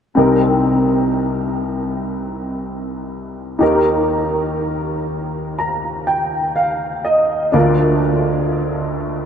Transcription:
0.15 3.57 C2 soft
0.15 3.57 C3 soft
0.15 3.56 C4 soft
0.15 3.57 D#4 soft
0.15 3.58 A#4 soft
3.59 7.50 D#2 soft
3.59 7.50 D#3 soft
3.59 7.49 D#4 soft
3.59 7.50 G4 soft
3.59 7.51 A#4 soft
5.59 6.04 A#5 soft
6.07 6.53 G5 soft
6.56 7.02 F5 soft
7.05 7.51 D#5 soft
7.52 9.26 D2 soft
7.52 9.26 D3 soft
7.52 9.26 D4 soft
7.52 9.26 F4 soft
7.52 9.26 A#4 medium
7.52 8.00 D5 soft

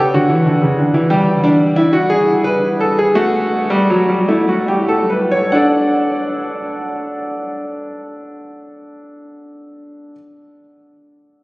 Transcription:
0.00 0.13 G4 medium
0.14 0.29 D3 medium
0.14 1.07 F#4 medium
0.29 0.45 E3 medium
0.46 0.61 D3 medium
0.62 0.78 C#3 medium
0.79 0.94 D3 medium
0.94 1.10 E3 medium
1.10 3.10 G3 medium
1.10 1.30 G4 medium
1.44 1.64 D4 loud
1.76 1.92 E4 medium
1.93 2.09 F#4 medium
2.10 2.31 G#4 loud
2.44 2.66 B4 medium
2.80 2.97 A4 medium
2.99 3.15 G#4 medium
3.15 3.69 A3 loud
3.15 4.24 F#4 medium
3.70 3.88 G3 medium
3.90 4.08 F#3 medium
4.09 4.27 G3 medium
4.29 5.49 A3 medium
4.29 4.47 E4 medium
4.49 4.67 F#4 medium
4.68 4.88 G4 medium
4.89 5.08 A4 medium
5.10 5.30 B4 medium
5.32 5.52 C#5 medium
5.52 10.11 D4 medium
5.52 10.14 A4 medium
5.52 10.14 D5 medium
5.52 10.11 F#5 medium

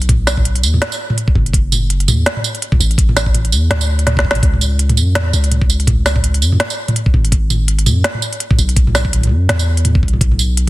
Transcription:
0.00 0.65 B1 medium
0.00 closed hi-hat soft
0.09 kick loud
0.09 closed hi-hat medium
0.09 mid tom medium
0.27 snare medium
0.27 tambourine medium
0.37 kick medium
0.37 mid tom medium
0.45 closed hi-hat medium
0.56 closed hi-hat soft
0.63 0.80 E2 loud
0.63 tambourine medium
0.74 mid tom medium
0.82 snare loud
0.82 closed hi-hat medium
0.92 tambourine medium
1.10 mid tom medium
1.18 closed hi-hat medium
1.28 kick loud
1.35 2.09 F#1 loud
1.35 kick medium
1.35 mid tom medium
1.46 closed hi-hat soft
1.53 kick loud
1.53 closed hi-hat medium
1.72 mid tom medium
1.72 tambourine medium
1.90 closed hi-hat medium
2.00 closed hi-hat soft
2.08 2.25 E2 loud
2.08 mid tom medium
2.08 tambourine medium
2.26 snare loud
2.26 closed hi-hat medium
2.37 mid tom medium
2.44 tambourine medium
2.55 closed hi-hat soft
2.62 closed hi-hat medium
2.72 kick loud
2.72 mid tom medium
2.80 3.54 A1 medium
2.80 tambourine medium
2.91 closed hi-hat soft
2.98 kick loud
2.98 closed hi-hat medium
3.09 mid tom medium
3.17 snare medium
3.17 tambourine medium
3.26 kick medium
3.34 closed hi-hat medium
3.34 mid tom medium
3.45 closed hi-hat soft
3.52 3.69 E2 loud
3.52 tambourine medium
3.70 4.26 D2 medium
3.70 snare loud
3.70 closed hi-hat medium
3.70 mid tom medium
3.81 tambourine medium
3.99 closed hi-hat soft
4.07 snare medium
4.07 closed hi-hat medium
4.07 mid tom medium
4.17 kick loud
4.17 snare medium
4.25 4.42 A1 medium
4.25 kick medium
4.31 snare medium
4.35 closed hi-hat soft
4.35 mid tom medium
4.43 4.99 C#2 loud
4.43 kick loud
4.43 closed hi-hat medium
4.53 mid tom medium
4.61 tambourine medium
4.79 closed hi-hat medium
4.89 closed hi-hat soft
4.89 mid tom medium
4.97 5.17 F#2 loud
4.97 tambourine medium
5.15 5.32 E2 loud
5.15 snare loud
5.15 closed hi-hat medium
5.15 mid tom medium
5.33 6.43 C#2 medium
5.33 tambourine medium
5.44 closed hi-hat soft
5.51 closed hi-hat medium
5.51 mid tom medium
5.62 kick loud
5.70 tambourine medium
5.80 closed hi-hat soft
5.87 kick loud
5.87 closed hi-hat medium
5.87 mid tom medium
6.06 snare medium
6.06 tambourine medium
6.16 kick medium
6.16 mid tom medium
6.24 closed hi-hat medium
6.34 closed hi-hat soft
6.42 6.58 F#2 loud
6.42 tambourine medium
6.52 mid tom medium
6.60 snare loud
6.60 closed hi-hat medium
6.70 tambourine medium
6.88 closed hi-hat soft
6.88 mid tom medium
6.96 closed hi-hat medium
7.06 kick loud
7.14 7.88 G#1 loud
7.14 kick medium
7.14 mid tom medium
7.25 closed hi-hat soft
7.32 kick loud
7.32 closed hi-hat medium
7.50 mid tom medium
7.50 tambourine medium
7.68 closed hi-hat medium
7.79 closed hi-hat soft
7.86 8.03 F#2 loud
7.86 mid tom medium
7.86 tambourine medium
8.04 snare loud
8.04 closed hi-hat medium
8.14 mid tom medium
8.22 tambourine medium
8.33 closed hi-hat soft
8.40 closed hi-hat medium
8.50 kick loud
8.50 mid tom soft
8.52 mid tom soft
8.56 9.32 B1 medium
8.56 mid tom soft
8.59 mid tom soft
8.59 tambourine medium
8.62 mid tom soft
8.64 mid tom soft
8.69 closed hi-hat soft
8.76 kick loud
8.76 closed hi-hat medium
8.87 mid tom medium
8.95 snare medium
8.95 tambourine medium
9.05 kick medium
9.13 closed hi-hat medium
9.13 mid tom soft
9.16 mid tom soft
9.18 mid tom soft
9.21 closed hi-hat soft
9.21 mid tom soft
9.23 mid tom soft
9.25 mid tom soft
9.27 mid tom soft
9.29 9.48 F#2 loud
9.29 mid tom soft
9.49 10.04 E2 medium
9.49 snare loud
9.49 closed hi-hat medium
9.49 mid tom medium
9.59 tambourine medium
9.77 closed hi-hat soft
9.85 closed hi-hat medium
9.85 mid tom medium
9.95 kick loud
10.03 10.20 B1 medium
10.03 kick medium
10.08 closed hi-hat soft
10.13 mid tom soft
10.21 10.69 B1 loud
10.21 kick loud
10.21 closed hi-hat medium
10.31 mid tom medium
10.39 tambourine medium
10.57 closed hi-hat medium

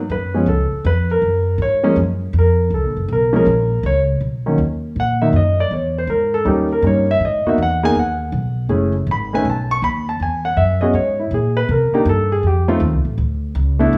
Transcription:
0.09 0.45 F#2 medium
0.09 0.45 B4 medium
0.34 0.46 F3 medium
0.34 0.46 G#3 medium
0.34 0.46 B3 medium
0.34 0.46 C#4 medium
0.46 0.69 C#2 medium
0.46 0.83 A4 medium
0.72 muted upright bass stroke soft
0.85 1.21 F2 medium
0.85 1.09 B4 medium
1.11 1.57 A#4 medium
1.22 1.57 F#2 medium
1.58 1.95 G#2 medium
1.62 1.85 C#5 medium
1.83 1.95 F3 medium
1.83 1.95 G#3 medium
1.83 1.95 A#3 medium
1.83 1.95 C#4 medium
1.96 2.33 F#2 medium
2.33 2.70 F2 medium
2.39 2.71 A#4 medium
2.70 2.83 C#2 medium
2.70 3.08 A4 medium
2.83 2.96 A#1 medium
2.97 3.08 F#1 medium
3.08 3.45 B1 medium
3.13 3.35 A#4 medium
3.33 3.45 F3 medium
3.33 3.45 G#3 medium
3.33 3.45 A#3 medium
3.33 3.45 C#4 medium
3.33 3.82 A#4 medium
3.46 3.83 A#1 medium
3.83 4.20 C#2 medium
3.83 4.00 C#5 medium
4.21 4.57 B1 medium
4.46 4.57 D#3 medium
4.46 4.58 F#3 medium
4.46 4.57 A#3 medium
4.46 4.58 C#4 medium
4.58 4.94 D#2 medium
4.96 5.32 A#2 medium
4.96 5.22 F#5 medium
5.22 5.33 D#3 medium
5.22 5.33 F#3 medium
5.22 5.33 A#3 medium
5.22 5.33 D#4 medium
5.22 5.33 E5 medium
5.33 5.69 F#2 medium
5.33 5.59 D#5 medium
5.60 5.71 D5 medium
5.71 6.07 E2 medium
5.71 5.96 C#5 medium
5.98 6.09 C5 medium
6.07 6.44 G#2 medium
6.07 6.33 A#4 medium
6.34 6.46 A4 medium
6.45 6.82 D#2 medium
6.45 6.67 G3 medium
6.45 6.68 A#3 medium
6.45 6.68 C#4 medium
6.45 6.68 D#4 medium
6.45 6.71 G4 medium
6.73 6.84 A#4 medium
6.82 7.19 G2 medium
6.82 7.06 G3 soft
6.82 7.05 A#3 soft
6.82 7.06 C#4 soft
6.82 7.06 D#4 medium
6.87 7.09 C#5 medium
7.11 7.22 E5 loud
7.20 7.43 G#2 medium
7.25 7.47 D#5 medium
7.46 7.57 A#3 medium
7.46 7.57 B3 medium
7.46 7.57 D#4 medium
7.46 7.57 F#4 medium
7.46 7.59 E5 medium
7.46 muted upright bass stroke soft
7.58 7.94 E2 medium
7.63 7.84 F#5 medium
7.83 7.94 A#3 medium
7.83 7.94 B3 medium
7.83 7.94 D#4 medium
7.83 7.94 G#4 medium
7.83 7.96 G#5 loud
7.95 8.31 D#2 medium
7.99 8.68 F#5 medium
8.32 8.68 B1 medium
8.69 9.05 F#1 medium
8.69 8.92 A3 medium
8.69 8.92 C#4 medium
8.69 8.92 E4 medium
8.69 8.92 G#4 medium
9.07 9.43 G#1 medium
9.11 9.33 B5 medium
9.33 9.44 A3 medium
9.33 9.44 C#4 medium
9.33 9.44 D#4 medium
9.33 9.44 B4 medium
9.33 9.46 G#5 medium
9.45 9.81 B1 medium
9.50 9.71 A5 medium
9.71 9.82 C#6 loud
9.82 10.18 D#2 medium
9.82 10.07 B5 loud
10.09 10.20 A5 medium
10.20 10.55 E2 medium
10.20 10.45 G#5 medium
10.45 10.57 F#5 medium
10.56 10.92 F#2 medium
10.56 10.81 E5 medium
10.81 10.93 B3 medium
10.81 10.93 C#4 medium
10.81 10.93 F#4 medium
10.81 10.93 G#4 medium
10.81 10.93 D#5 medium
10.93 11.30 G#2 medium
10.93 11.18 C#5 medium
11.20 11.31 E4 medium
11.31 11.67 A#2 medium
11.31 11.56 G#4 medium
11.57 11.68 B4 loud
11.69 11.91 C3 medium
11.69 11.93 A#4 medium
11.93 12.04 A#3 medium
11.93 12.05 D4 medium
11.93 12.05 D#4 medium
11.93 12.05 G4 medium
11.93 muted upright bass stroke soft
12.05 12.41 G2 medium
12.05 12.31 A4 medium
12.32 12.43 G#4 medium
12.43 12.79 F2 medium
12.43 12.79 G4 medium
12.68 12.79 A3 medium
12.68 12.79 C4 medium
12.68 12.79 D#4 medium
12.68 12.79 F4 medium
12.80 12.92 D#2 medium
12.92 13.04 C2 medium
13.05 13.16 A1 medium
13.18 13.53 D2 medium
13.55 13.91 C#2 medium
13.79 13.98 A3 medium
13.79 13.98 B3 medium
13.79 13.98 D4 medium
13.79 13.98 E4 medium
13.93 13.98 B1 medium

